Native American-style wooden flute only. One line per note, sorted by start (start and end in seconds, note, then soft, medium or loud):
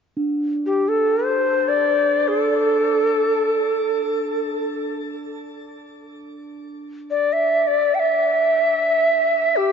0.66 0.90 G4 medium
0.88 1.26 A4 medium
1.24 1.70 C5 medium
1.68 2.29 D5 medium
2.28 4.56 A4 medium
7.10 7.34 D5 medium
7.33 7.69 E5 medium
7.67 7.96 D5 medium
7.94 8.00 G5 medium
7.99 9.58 E5 medium
9.56 9.72 G4 medium